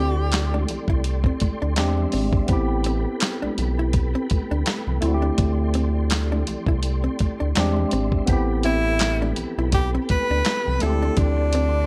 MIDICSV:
0, 0, Header, 1, 8, 480
1, 0, Start_track
1, 0, Key_signature, 0, "minor"
1, 0, Tempo, 722892
1, 1658, Time_signature, 4, 2, 24, 8
1, 7878, End_track
2, 0, Start_track
2, 0, Title_t, "Tonewheel organ"
2, 0, Program_c, 0, 16
2, 0, Note_on_c, 0, 69, 70
2, 0, Note_on_c, 0, 74, 56
2, 0, Note_on_c, 0, 79, 63
2, 0, Note_on_c, 0, 84, 76
2, 1155, Note_off_c, 0, 69, 0
2, 1155, Note_off_c, 0, 79, 0
2, 1177, Note_on_c, 0, 56, 70
2, 1177, Note_on_c, 0, 76, 58
2, 1638, Note_off_c, 0, 74, 0
2, 1639, Note_off_c, 0, 84, 0
2, 1648, Note_on_c, 0, 71, 59
2, 1648, Note_on_c, 0, 79, 58
2, 1649, Note_on_c, 0, 83, 79
2, 1651, Note_on_c, 0, 69, 70
2, 1653, Note_off_c, 0, 56, 0
2, 1653, Note_off_c, 0, 76, 0
2, 3316, Note_off_c, 0, 71, 0
2, 3317, Note_off_c, 0, 83, 0
2, 3342, Note_on_c, 0, 84, 65
2, 3344, Note_on_c, 0, 74, 63
2, 4986, Note_off_c, 0, 79, 0
2, 4988, Note_off_c, 0, 69, 0
2, 5018, Note_on_c, 0, 76, 65
2, 5020, Note_on_c, 0, 56, 70
2, 5479, Note_off_c, 0, 84, 0
2, 5480, Note_off_c, 0, 74, 0
2, 5493, Note_off_c, 0, 76, 0
2, 5494, Note_off_c, 0, 56, 0
2, 5500, Note_on_c, 0, 69, 75
2, 5500, Note_on_c, 0, 71, 59
2, 5500, Note_on_c, 0, 79, 58
2, 5503, Note_on_c, 0, 83, 79
2, 7162, Note_off_c, 0, 71, 0
2, 7162, Note_off_c, 0, 79, 0
2, 7164, Note_off_c, 0, 83, 0
2, 7179, Note_on_c, 0, 74, 55
2, 7180, Note_on_c, 0, 79, 54
2, 7183, Note_on_c, 0, 84, 69
2, 7878, Note_off_c, 0, 69, 0
2, 7878, Note_off_c, 0, 74, 0
2, 7878, Note_off_c, 0, 79, 0
2, 7878, Note_off_c, 0, 84, 0
2, 7878, End_track
3, 0, Start_track
3, 0, Title_t, "Tenor saxophone"
3, 0, Program_c, 1, 66
3, 0, Note_on_c, 1, 67, 97
3, 588, Note_off_c, 1, 67, 0
3, 5742, Note_on_c, 1, 64, 121
3, 6194, Note_off_c, 1, 64, 0
3, 6469, Note_on_c, 1, 67, 110
3, 6574, Note_off_c, 1, 67, 0
3, 6711, Note_on_c, 1, 71, 121
3, 7186, Note_on_c, 1, 69, 97
3, 7196, Note_off_c, 1, 71, 0
3, 7426, Note_on_c, 1, 62, 102
3, 7436, Note_off_c, 1, 69, 0
3, 7878, Note_off_c, 1, 62, 0
3, 7878, End_track
4, 0, Start_track
4, 0, Title_t, "Hollow-body jazz guitar"
4, 0, Program_c, 2, 26
4, 0, Note_on_c, 2, 60, 74
4, 80, Note_off_c, 2, 60, 0
4, 359, Note_on_c, 2, 62, 63
4, 433, Note_off_c, 2, 62, 0
4, 595, Note_on_c, 2, 64, 72
4, 671, Note_off_c, 2, 64, 0
4, 836, Note_on_c, 2, 60, 58
4, 911, Note_off_c, 2, 60, 0
4, 1074, Note_on_c, 2, 62, 68
4, 1150, Note_off_c, 2, 62, 0
4, 1417, Note_on_c, 2, 60, 69
4, 1514, Note_off_c, 2, 60, 0
4, 1901, Note_on_c, 2, 60, 83
4, 1997, Note_off_c, 2, 60, 0
4, 2273, Note_on_c, 2, 62, 64
4, 2350, Note_off_c, 2, 62, 0
4, 2518, Note_on_c, 2, 64, 72
4, 2592, Note_off_c, 2, 64, 0
4, 2756, Note_on_c, 2, 60, 71
4, 2831, Note_off_c, 2, 60, 0
4, 2997, Note_on_c, 2, 62, 77
4, 3072, Note_off_c, 2, 62, 0
4, 3336, Note_on_c, 2, 64, 82
4, 3433, Note_off_c, 2, 64, 0
4, 3467, Note_on_c, 2, 62, 71
4, 3545, Note_off_c, 2, 62, 0
4, 3819, Note_on_c, 2, 60, 80
4, 3915, Note_off_c, 2, 60, 0
4, 4197, Note_on_c, 2, 62, 70
4, 4272, Note_off_c, 2, 62, 0
4, 4437, Note_on_c, 2, 64, 74
4, 4512, Note_off_c, 2, 64, 0
4, 4673, Note_on_c, 2, 60, 66
4, 4750, Note_off_c, 2, 60, 0
4, 4914, Note_on_c, 2, 62, 71
4, 4990, Note_off_c, 2, 62, 0
4, 5265, Note_on_c, 2, 60, 82
4, 5359, Note_off_c, 2, 60, 0
4, 5748, Note_on_c, 2, 60, 88
4, 5841, Note_off_c, 2, 60, 0
4, 6122, Note_on_c, 2, 62, 72
4, 6195, Note_off_c, 2, 62, 0
4, 6365, Note_on_c, 2, 64, 74
4, 6437, Note_off_c, 2, 64, 0
4, 6604, Note_on_c, 2, 60, 72
4, 6677, Note_off_c, 2, 60, 0
4, 6845, Note_on_c, 2, 62, 67
4, 6917, Note_off_c, 2, 62, 0
4, 7192, Note_on_c, 2, 64, 76
4, 7283, Note_off_c, 2, 64, 0
4, 7320, Note_on_c, 2, 62, 78
4, 7394, Note_off_c, 2, 62, 0
4, 7667, Note_on_c, 2, 60, 75
4, 7760, Note_off_c, 2, 60, 0
4, 7878, End_track
5, 0, Start_track
5, 0, Title_t, "Tine electric piano"
5, 0, Program_c, 3, 4
5, 0, Control_c, 3, 64, 127
5, 0, Note_on_c, 3, 57, 64
5, 0, Note_on_c, 3, 60, 60
5, 0, Note_on_c, 3, 64, 65
5, 0, Note_on_c, 3, 67, 76
5, 1144, Note_off_c, 3, 57, 0
5, 1151, Note_off_c, 3, 60, 0
5, 1159, Note_off_c, 3, 64, 0
5, 1170, Note_on_c, 3, 56, 76
5, 1174, Note_on_c, 3, 60, 72
5, 1180, Note_off_c, 3, 67, 0
5, 1183, Note_on_c, 3, 62, 74
5, 1186, Control_c, 3, 64, 0
5, 1188, Note_on_c, 3, 67, 88
5, 1300, Control_c, 3, 64, 127
5, 1635, Note_on_c, 3, 59, 72
5, 1643, Note_off_c, 3, 60, 0
5, 1651, Note_on_c, 3, 60, 69
5, 1654, Note_off_c, 3, 56, 0
5, 1661, Note_off_c, 3, 62, 0
5, 1663, Note_off_c, 3, 67, 0
5, 1666, Control_c, 3, 64, 0
5, 1666, Note_on_c, 3, 64, 67
5, 1679, Note_on_c, 3, 67, 80
5, 1801, Control_c, 3, 64, 127
5, 3300, Note_off_c, 3, 59, 0
5, 3308, Note_off_c, 3, 60, 0
5, 3315, Note_off_c, 3, 64, 0
5, 3322, Note_off_c, 3, 67, 0
5, 3325, Note_on_c, 3, 57, 83
5, 3343, Note_on_c, 3, 60, 72
5, 3347, Control_c, 3, 64, 0
5, 3357, Note_on_c, 3, 64, 76
5, 3372, Note_on_c, 3, 66, 77
5, 3403, Note_off_c, 3, 66, 0
5, 3415, Note_on_c, 3, 67, 94
5, 3466, Control_c, 3, 64, 127
5, 4985, Note_off_c, 3, 57, 0
5, 4994, Note_off_c, 3, 60, 0
5, 5001, Note_off_c, 3, 64, 0
5, 5019, Note_on_c, 3, 55, 65
5, 5027, Control_c, 3, 64, 0
5, 5030, Note_off_c, 3, 67, 0
5, 5030, Note_on_c, 3, 60, 72
5, 5036, Note_on_c, 3, 62, 81
5, 5044, Note_on_c, 3, 67, 92
5, 5064, Note_on_c, 3, 56, 76
5, 5066, Note_off_c, 3, 55, 0
5, 5145, Control_c, 3, 64, 127
5, 5485, Note_on_c, 3, 59, 80
5, 5490, Note_off_c, 3, 60, 0
5, 5498, Note_on_c, 3, 60, 70
5, 5507, Note_off_c, 3, 62, 0
5, 5507, Control_c, 3, 64, 0
5, 5511, Note_off_c, 3, 67, 0
5, 5517, Note_on_c, 3, 64, 65
5, 5521, Note_off_c, 3, 56, 0
5, 5528, Note_on_c, 3, 67, 80
5, 5640, Control_c, 3, 64, 127
5, 7145, Note_off_c, 3, 59, 0
5, 7152, Note_off_c, 3, 60, 0
5, 7161, Note_off_c, 3, 64, 0
5, 7167, Note_off_c, 3, 67, 0
5, 7167, Note_on_c, 3, 57, 74
5, 7182, Note_on_c, 3, 60, 62
5, 7186, Control_c, 3, 64, 0
5, 7198, Note_on_c, 3, 64, 64
5, 7212, Note_on_c, 3, 67, 79
5, 7295, Control_c, 3, 64, 127
5, 7878, Note_off_c, 3, 57, 0
5, 7878, Note_off_c, 3, 60, 0
5, 7878, Note_off_c, 3, 64, 0
5, 7878, Note_off_c, 3, 67, 0
5, 7878, End_track
6, 0, Start_track
6, 0, Title_t, "Analog synth bass"
6, 0, Program_c, 4, 38
6, 0, Note_on_c, 4, 38, 105
6, 434, Note_off_c, 4, 38, 0
6, 466, Note_on_c, 4, 36, 43
6, 517, Note_off_c, 4, 36, 0
6, 587, Note_on_c, 4, 36, 95
6, 860, Note_off_c, 4, 36, 0
6, 943, Note_on_c, 4, 38, 47
6, 995, Note_off_c, 4, 38, 0
6, 1077, Note_on_c, 4, 38, 82
6, 1182, Note_on_c, 4, 40, 101
6, 1192, Note_off_c, 4, 38, 0
6, 1369, Note_off_c, 4, 40, 0
6, 1420, Note_on_c, 4, 32, 100
6, 1607, Note_off_c, 4, 32, 0
6, 1655, Note_on_c, 4, 33, 111
6, 2033, Note_off_c, 4, 33, 0
6, 2276, Note_on_c, 4, 35, 41
6, 2317, Note_off_c, 4, 35, 0
6, 2378, Note_on_c, 4, 35, 97
6, 2754, Note_off_c, 4, 35, 0
6, 2868, Note_on_c, 4, 38, 44
6, 2919, Note_off_c, 4, 38, 0
6, 2996, Note_on_c, 4, 38, 83
6, 3078, Note_off_c, 4, 38, 0
6, 3234, Note_on_c, 4, 36, 83
6, 3317, Note_off_c, 4, 36, 0
6, 3338, Note_on_c, 4, 38, 106
6, 3526, Note_off_c, 4, 38, 0
6, 3581, Note_on_c, 4, 38, 103
6, 4273, Note_off_c, 4, 38, 0
6, 4306, Note_on_c, 4, 36, 48
6, 4357, Note_off_c, 4, 36, 0
6, 4430, Note_on_c, 4, 36, 92
6, 4702, Note_off_c, 4, 36, 0
6, 4787, Note_on_c, 4, 38, 45
6, 4838, Note_off_c, 4, 38, 0
6, 4922, Note_on_c, 4, 38, 80
6, 5001, Note_off_c, 4, 38, 0
6, 5027, Note_on_c, 4, 40, 97
6, 5212, Note_off_c, 4, 40, 0
6, 5264, Note_on_c, 4, 32, 89
6, 5450, Note_off_c, 4, 32, 0
6, 5504, Note_on_c, 4, 33, 89
6, 6195, Note_off_c, 4, 33, 0
6, 6228, Note_on_c, 4, 35, 45
6, 6279, Note_off_c, 4, 35, 0
6, 6360, Note_on_c, 4, 35, 94
6, 6629, Note_off_c, 4, 35, 0
6, 6710, Note_on_c, 4, 38, 44
6, 6760, Note_off_c, 4, 38, 0
6, 6842, Note_on_c, 4, 38, 90
6, 6921, Note_off_c, 4, 38, 0
6, 7087, Note_on_c, 4, 36, 90
6, 7164, Note_off_c, 4, 36, 0
6, 7189, Note_on_c, 4, 38, 98
6, 7373, Note_off_c, 4, 38, 0
6, 7424, Note_on_c, 4, 38, 107
6, 7878, Note_off_c, 4, 38, 0
6, 7878, End_track
7, 0, Start_track
7, 0, Title_t, "Muted hollow-body jazz guitar strokes"
7, 469, Note_on_c, 9, 29, 41
7, 535, Note_off_c, 9, 29, 0
7, 943, Note_on_c, 9, 29, 38
7, 1009, Note_off_c, 9, 29, 0
7, 2383, Note_on_c, 9, 29, 39
7, 2450, Note_off_c, 9, 29, 0
7, 2860, Note_on_c, 9, 29, 45
7, 2926, Note_off_c, 9, 29, 0
7, 3100, Note_on_c, 9, 29, 44
7, 3166, Note_off_c, 9, 29, 0
7, 4304, Note_on_c, 9, 29, 42
7, 4370, Note_off_c, 9, 29, 0
7, 4784, Note_on_c, 9, 29, 40
7, 4851, Note_off_c, 9, 29, 0
7, 6229, Note_on_c, 9, 29, 41
7, 6296, Note_off_c, 9, 29, 0
7, 6714, Note_on_c, 9, 29, 40
7, 6780, Note_off_c, 9, 29, 0
7, 6953, Note_on_c, 9, 29, 44
7, 7019, Note_off_c, 9, 29, 0
7, 7878, End_track
8, 0, Start_track
8, 0, Title_t, "Drums"
8, 210, Note_on_c, 9, 42, 91
8, 220, Note_on_c, 9, 39, 102
8, 220, Note_on_c, 9, 62, 28
8, 225, Note_on_c, 9, 38, 127
8, 277, Note_off_c, 9, 42, 0
8, 286, Note_off_c, 9, 62, 0
8, 287, Note_off_c, 9, 39, 0
8, 291, Note_off_c, 9, 38, 0
8, 358, Note_on_c, 9, 63, 57
8, 425, Note_off_c, 9, 63, 0
8, 454, Note_on_c, 9, 62, 28
8, 454, Note_on_c, 9, 64, 58
8, 455, Note_on_c, 9, 42, 66
8, 520, Note_off_c, 9, 62, 0
8, 520, Note_off_c, 9, 64, 0
8, 521, Note_off_c, 9, 42, 0
8, 583, Note_on_c, 9, 36, 99
8, 650, Note_off_c, 9, 36, 0
8, 691, Note_on_c, 9, 42, 75
8, 758, Note_off_c, 9, 42, 0
8, 822, Note_on_c, 9, 36, 89
8, 889, Note_off_c, 9, 36, 0
8, 930, Note_on_c, 9, 42, 67
8, 940, Note_on_c, 9, 36, 86
8, 943, Note_on_c, 9, 63, 67
8, 997, Note_off_c, 9, 42, 0
8, 1007, Note_off_c, 9, 36, 0
8, 1009, Note_off_c, 9, 63, 0
8, 1170, Note_on_c, 9, 42, 79
8, 1175, Note_on_c, 9, 63, 68
8, 1176, Note_on_c, 9, 39, 92
8, 1181, Note_on_c, 9, 38, 113
8, 1236, Note_off_c, 9, 42, 0
8, 1242, Note_off_c, 9, 63, 0
8, 1243, Note_off_c, 9, 39, 0
8, 1247, Note_off_c, 9, 38, 0
8, 1313, Note_on_c, 9, 64, 65
8, 1380, Note_off_c, 9, 64, 0
8, 1408, Note_on_c, 9, 46, 53
8, 1423, Note_on_c, 9, 62, 27
8, 1423, Note_on_c, 9, 63, 47
8, 1474, Note_off_c, 9, 46, 0
8, 1489, Note_off_c, 9, 62, 0
8, 1489, Note_off_c, 9, 63, 0
8, 1545, Note_on_c, 9, 36, 93
8, 1611, Note_off_c, 9, 36, 0
8, 1647, Note_on_c, 9, 42, 75
8, 1653, Note_on_c, 9, 36, 114
8, 1714, Note_off_c, 9, 42, 0
8, 1719, Note_off_c, 9, 36, 0
8, 1887, Note_on_c, 9, 42, 74
8, 1953, Note_off_c, 9, 42, 0
8, 2127, Note_on_c, 9, 42, 103
8, 2137, Note_on_c, 9, 39, 103
8, 2139, Note_on_c, 9, 62, 24
8, 2142, Note_on_c, 9, 38, 127
8, 2193, Note_off_c, 9, 42, 0
8, 2204, Note_off_c, 9, 39, 0
8, 2205, Note_off_c, 9, 62, 0
8, 2208, Note_off_c, 9, 38, 0
8, 2285, Note_on_c, 9, 63, 58
8, 2352, Note_off_c, 9, 63, 0
8, 2376, Note_on_c, 9, 42, 67
8, 2380, Note_on_c, 9, 64, 57
8, 2443, Note_off_c, 9, 42, 0
8, 2446, Note_off_c, 9, 64, 0
8, 2611, Note_on_c, 9, 42, 77
8, 2615, Note_on_c, 9, 36, 84
8, 2619, Note_on_c, 9, 62, 30
8, 2677, Note_off_c, 9, 42, 0
8, 2682, Note_off_c, 9, 36, 0
8, 2686, Note_off_c, 9, 62, 0
8, 2854, Note_on_c, 9, 42, 64
8, 2862, Note_on_c, 9, 36, 93
8, 2867, Note_on_c, 9, 63, 64
8, 2920, Note_off_c, 9, 42, 0
8, 2929, Note_off_c, 9, 36, 0
8, 2933, Note_off_c, 9, 63, 0
8, 3094, Note_on_c, 9, 42, 82
8, 3099, Note_on_c, 9, 62, 32
8, 3099, Note_on_c, 9, 63, 72
8, 3100, Note_on_c, 9, 39, 87
8, 3104, Note_on_c, 9, 38, 125
8, 3160, Note_off_c, 9, 42, 0
8, 3165, Note_off_c, 9, 62, 0
8, 3165, Note_off_c, 9, 63, 0
8, 3167, Note_off_c, 9, 39, 0
8, 3171, Note_off_c, 9, 38, 0
8, 3236, Note_on_c, 9, 64, 62
8, 3302, Note_off_c, 9, 64, 0
8, 3332, Note_on_c, 9, 42, 70
8, 3347, Note_on_c, 9, 63, 45
8, 3399, Note_off_c, 9, 42, 0
8, 3413, Note_off_c, 9, 63, 0
8, 3572, Note_on_c, 9, 42, 87
8, 3576, Note_on_c, 9, 36, 122
8, 3579, Note_on_c, 9, 62, 28
8, 3638, Note_off_c, 9, 42, 0
8, 3642, Note_off_c, 9, 36, 0
8, 3646, Note_off_c, 9, 62, 0
8, 3810, Note_on_c, 9, 42, 72
8, 3821, Note_on_c, 9, 62, 29
8, 3877, Note_off_c, 9, 42, 0
8, 3887, Note_off_c, 9, 62, 0
8, 4050, Note_on_c, 9, 42, 103
8, 4060, Note_on_c, 9, 39, 113
8, 4064, Note_on_c, 9, 38, 119
8, 4116, Note_off_c, 9, 42, 0
8, 4126, Note_off_c, 9, 39, 0
8, 4131, Note_off_c, 9, 38, 0
8, 4204, Note_on_c, 9, 63, 64
8, 4270, Note_off_c, 9, 63, 0
8, 4296, Note_on_c, 9, 42, 69
8, 4297, Note_on_c, 9, 62, 29
8, 4297, Note_on_c, 9, 64, 61
8, 4362, Note_off_c, 9, 42, 0
8, 4363, Note_off_c, 9, 62, 0
8, 4363, Note_off_c, 9, 64, 0
8, 4425, Note_on_c, 9, 36, 91
8, 4492, Note_off_c, 9, 36, 0
8, 4533, Note_on_c, 9, 42, 81
8, 4539, Note_on_c, 9, 62, 27
8, 4599, Note_off_c, 9, 42, 0
8, 4606, Note_off_c, 9, 62, 0
8, 4774, Note_on_c, 9, 42, 69
8, 4784, Note_on_c, 9, 36, 91
8, 4784, Note_on_c, 9, 62, 35
8, 4784, Note_on_c, 9, 63, 66
8, 4840, Note_off_c, 9, 42, 0
8, 4850, Note_off_c, 9, 36, 0
8, 4850, Note_off_c, 9, 62, 0
8, 4850, Note_off_c, 9, 63, 0
8, 5015, Note_on_c, 9, 62, 35
8, 5015, Note_on_c, 9, 63, 64
8, 5016, Note_on_c, 9, 42, 97
8, 5022, Note_on_c, 9, 39, 97
8, 5027, Note_on_c, 9, 38, 118
8, 5081, Note_off_c, 9, 62, 0
8, 5081, Note_off_c, 9, 63, 0
8, 5083, Note_off_c, 9, 42, 0
8, 5089, Note_off_c, 9, 39, 0
8, 5093, Note_off_c, 9, 38, 0
8, 5157, Note_on_c, 9, 64, 65
8, 5223, Note_off_c, 9, 64, 0
8, 5254, Note_on_c, 9, 42, 74
8, 5262, Note_on_c, 9, 63, 50
8, 5321, Note_off_c, 9, 42, 0
8, 5328, Note_off_c, 9, 63, 0
8, 5391, Note_on_c, 9, 36, 82
8, 5457, Note_off_c, 9, 36, 0
8, 5493, Note_on_c, 9, 42, 73
8, 5498, Note_on_c, 9, 36, 106
8, 5560, Note_off_c, 9, 42, 0
8, 5565, Note_off_c, 9, 36, 0
8, 5733, Note_on_c, 9, 42, 75
8, 5799, Note_off_c, 9, 42, 0
8, 5971, Note_on_c, 9, 42, 97
8, 5981, Note_on_c, 9, 39, 113
8, 5985, Note_on_c, 9, 38, 121
8, 6037, Note_off_c, 9, 42, 0
8, 6047, Note_off_c, 9, 39, 0
8, 6051, Note_off_c, 9, 38, 0
8, 6118, Note_on_c, 9, 63, 64
8, 6185, Note_off_c, 9, 63, 0
8, 6213, Note_on_c, 9, 64, 57
8, 6217, Note_on_c, 9, 42, 69
8, 6279, Note_off_c, 9, 64, 0
8, 6283, Note_off_c, 9, 42, 0
8, 6456, Note_on_c, 9, 42, 80
8, 6459, Note_on_c, 9, 36, 97
8, 6459, Note_on_c, 9, 62, 29
8, 6522, Note_off_c, 9, 42, 0
8, 6526, Note_off_c, 9, 36, 0
8, 6526, Note_off_c, 9, 62, 0
8, 6699, Note_on_c, 9, 42, 66
8, 6706, Note_on_c, 9, 36, 87
8, 6707, Note_on_c, 9, 63, 72
8, 6765, Note_off_c, 9, 42, 0
8, 6773, Note_off_c, 9, 36, 0
8, 6773, Note_off_c, 9, 63, 0
8, 6937, Note_on_c, 9, 42, 86
8, 6938, Note_on_c, 9, 63, 71
8, 6943, Note_on_c, 9, 39, 103
8, 6947, Note_on_c, 9, 38, 121
8, 7003, Note_off_c, 9, 42, 0
8, 7004, Note_off_c, 9, 63, 0
8, 7010, Note_off_c, 9, 39, 0
8, 7014, Note_off_c, 9, 38, 0
8, 7073, Note_on_c, 9, 64, 62
8, 7140, Note_off_c, 9, 64, 0
8, 7173, Note_on_c, 9, 42, 67
8, 7182, Note_on_c, 9, 63, 44
8, 7240, Note_off_c, 9, 42, 0
8, 7249, Note_off_c, 9, 63, 0
8, 7415, Note_on_c, 9, 42, 77
8, 7419, Note_on_c, 9, 36, 111
8, 7422, Note_on_c, 9, 62, 28
8, 7422, Note_on_c, 9, 64, 58
8, 7481, Note_off_c, 9, 42, 0
8, 7485, Note_off_c, 9, 36, 0
8, 7489, Note_off_c, 9, 62, 0
8, 7489, Note_off_c, 9, 64, 0
8, 7653, Note_on_c, 9, 42, 74
8, 7662, Note_on_c, 9, 62, 29
8, 7720, Note_off_c, 9, 42, 0
8, 7728, Note_off_c, 9, 62, 0
8, 7878, End_track
0, 0, End_of_file